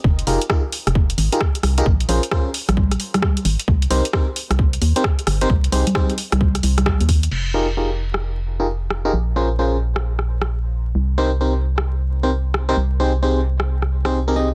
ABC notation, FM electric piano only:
X:1
M:4/4
L:1/16
Q:"Swing 16ths" 1/4=132
K:Fm
V:1 name="FM electric piano"
z2 [EFGAB] z [EFGAB] z6 [EFGAB] z3 [EFGAB] | z2 [DFABc] z [DFABc] z8 z3 | z2 [CEGBc] z [CEGBc] z6 [CEGBc] z3 [CEGBc] | z2 [CEGAc] z [CEGAc] z8 z3 |
z2 [EFGAB] z [EFGAB] z6 [EFGAB] z3 [EFGAB] | z2 [DFABc] z [DFABc] z8 z3 | z2 [CEGBc] z [CEGBc] z6 [CEGBc] z3 [CEGBc] | z2 [CEGAc] z [CEGAc] z6 [CEGAc] z [CEGAB] [CEGAe] z |]